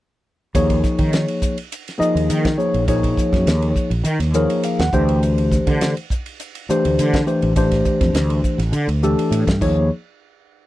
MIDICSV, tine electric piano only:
0, 0, Header, 1, 2, 480
1, 0, Start_track
1, 0, Tempo, 584795
1, 452, Time_signature, 4, 2, 24, 8
1, 8756, End_track
2, 0, Start_track
2, 0, Title_t, "Tine electric piano"
2, 0, Program_c, 0, 4
2, 448, Note_on_c, 0, 53, 70
2, 450, Note_on_c, 0, 58, 65
2, 453, Note_on_c, 0, 63, 65
2, 453, Note_on_c, 0, 68, 66
2, 456, Note_on_c, 0, 73, 79
2, 1275, Note_off_c, 0, 53, 0
2, 1276, Note_off_c, 0, 58, 0
2, 1277, Note_off_c, 0, 68, 0
2, 1278, Note_off_c, 0, 63, 0
2, 1279, Note_off_c, 0, 73, 0
2, 1624, Note_on_c, 0, 58, 66
2, 1630, Note_on_c, 0, 53, 75
2, 1633, Note_on_c, 0, 68, 69
2, 1634, Note_on_c, 0, 63, 72
2, 1640, Note_on_c, 0, 75, 84
2, 2050, Note_off_c, 0, 58, 0
2, 2052, Note_off_c, 0, 53, 0
2, 2054, Note_off_c, 0, 63, 0
2, 2054, Note_off_c, 0, 68, 0
2, 2058, Note_off_c, 0, 75, 0
2, 2113, Note_on_c, 0, 53, 67
2, 2115, Note_on_c, 0, 63, 61
2, 2116, Note_on_c, 0, 58, 58
2, 2117, Note_on_c, 0, 73, 78
2, 2118, Note_on_c, 0, 68, 60
2, 2327, Note_off_c, 0, 53, 0
2, 2328, Note_off_c, 0, 58, 0
2, 2328, Note_off_c, 0, 63, 0
2, 2329, Note_off_c, 0, 73, 0
2, 2330, Note_off_c, 0, 68, 0
2, 2359, Note_on_c, 0, 58, 63
2, 2366, Note_on_c, 0, 53, 68
2, 2367, Note_on_c, 0, 63, 64
2, 2368, Note_on_c, 0, 68, 67
2, 2369, Note_on_c, 0, 73, 81
2, 3189, Note_off_c, 0, 58, 0
2, 3192, Note_off_c, 0, 53, 0
2, 3193, Note_off_c, 0, 63, 0
2, 3194, Note_off_c, 0, 68, 0
2, 3194, Note_off_c, 0, 73, 0
2, 3562, Note_on_c, 0, 53, 79
2, 3565, Note_on_c, 0, 58, 69
2, 3567, Note_on_c, 0, 63, 70
2, 3568, Note_on_c, 0, 68, 68
2, 3569, Note_on_c, 0, 73, 68
2, 3575, Note_on_c, 0, 70, 85
2, 3790, Note_off_c, 0, 73, 0
2, 3812, Note_on_c, 0, 77, 62
2, 3925, Note_off_c, 0, 77, 0
2, 3937, Note_on_c, 0, 78, 64
2, 3978, Note_off_c, 0, 53, 0
2, 3979, Note_off_c, 0, 58, 0
2, 3980, Note_off_c, 0, 63, 0
2, 3981, Note_off_c, 0, 68, 0
2, 3984, Note_off_c, 0, 70, 0
2, 4040, Note_off_c, 0, 78, 0
2, 4046, Note_on_c, 0, 52, 74
2, 4048, Note_on_c, 0, 57, 73
2, 4048, Note_on_c, 0, 62, 72
2, 4051, Note_on_c, 0, 67, 67
2, 4052, Note_on_c, 0, 79, 65
2, 4054, Note_on_c, 0, 72, 85
2, 4272, Note_off_c, 0, 79, 0
2, 4873, Note_off_c, 0, 52, 0
2, 4874, Note_off_c, 0, 57, 0
2, 4874, Note_off_c, 0, 62, 0
2, 4876, Note_off_c, 0, 67, 0
2, 4877, Note_off_c, 0, 72, 0
2, 5494, Note_on_c, 0, 62, 74
2, 5496, Note_on_c, 0, 52, 79
2, 5498, Note_on_c, 0, 57, 69
2, 5499, Note_on_c, 0, 67, 70
2, 5504, Note_on_c, 0, 72, 83
2, 5905, Note_off_c, 0, 62, 0
2, 5906, Note_off_c, 0, 52, 0
2, 5907, Note_off_c, 0, 57, 0
2, 5907, Note_off_c, 0, 67, 0
2, 5910, Note_off_c, 0, 72, 0
2, 5963, Note_on_c, 0, 67, 64
2, 5964, Note_on_c, 0, 52, 68
2, 5965, Note_on_c, 0, 57, 63
2, 5968, Note_on_c, 0, 62, 60
2, 5971, Note_on_c, 0, 72, 75
2, 6172, Note_off_c, 0, 67, 0
2, 6173, Note_off_c, 0, 52, 0
2, 6174, Note_off_c, 0, 57, 0
2, 6175, Note_off_c, 0, 62, 0
2, 6177, Note_off_c, 0, 72, 0
2, 6205, Note_on_c, 0, 52, 70
2, 6208, Note_on_c, 0, 57, 64
2, 6208, Note_on_c, 0, 62, 69
2, 6214, Note_on_c, 0, 67, 64
2, 6217, Note_on_c, 0, 72, 82
2, 7036, Note_off_c, 0, 52, 0
2, 7037, Note_off_c, 0, 62, 0
2, 7038, Note_off_c, 0, 57, 0
2, 7040, Note_off_c, 0, 67, 0
2, 7042, Note_off_c, 0, 72, 0
2, 7412, Note_on_c, 0, 52, 74
2, 7413, Note_on_c, 0, 62, 71
2, 7413, Note_on_c, 0, 67, 72
2, 7417, Note_on_c, 0, 57, 71
2, 7420, Note_on_c, 0, 69, 84
2, 7827, Note_off_c, 0, 52, 0
2, 7828, Note_off_c, 0, 62, 0
2, 7828, Note_off_c, 0, 67, 0
2, 7830, Note_off_c, 0, 57, 0
2, 7831, Note_off_c, 0, 69, 0
2, 7890, Note_on_c, 0, 58, 65
2, 7890, Note_on_c, 0, 63, 65
2, 7895, Note_on_c, 0, 68, 61
2, 7896, Note_on_c, 0, 73, 78
2, 7897, Note_on_c, 0, 53, 71
2, 8114, Note_off_c, 0, 58, 0
2, 8115, Note_off_c, 0, 63, 0
2, 8117, Note_off_c, 0, 68, 0
2, 8117, Note_off_c, 0, 73, 0
2, 8118, Note_off_c, 0, 53, 0
2, 8756, End_track
0, 0, End_of_file